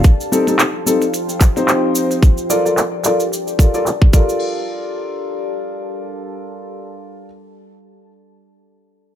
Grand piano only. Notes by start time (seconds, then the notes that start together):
0.32 C4 D#4 G4 A4
0.47 C4 D#4 G4 A4
0.86 C4 D#4 G4 A4
1.56 C4 D#4 G4 C5
2.50 F4 A4 A#4 D5
2.66 F4 A4 A#4 D5
3.05 F4 A4 A#4 D5
3.59 F4 A4 A#4 D5
3.74 F4 A4 A#4 D5
4.14 F4 A4 A#4 D5